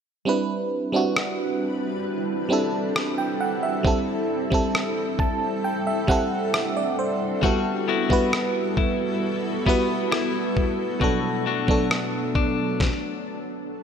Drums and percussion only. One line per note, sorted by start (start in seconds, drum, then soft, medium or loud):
1.17 cross-stick loud
2.96 cross-stick loud
3.85 kick loud
4.52 kick medium
4.75 cross-stick loud
5.19 kick medium
6.08 kick medium
6.54 cross-stick loud
7.43 kick loud
8.10 kick medium
8.33 cross-stick loud
8.77 kick medium
9.66 kick medium
10.12 cross-stick loud
10.57 kick medium
11.01 kick loud
11.68 kick medium
11.91 cross-stick loud
12.35 kick medium
12.80 kick loud
12.80 snare medium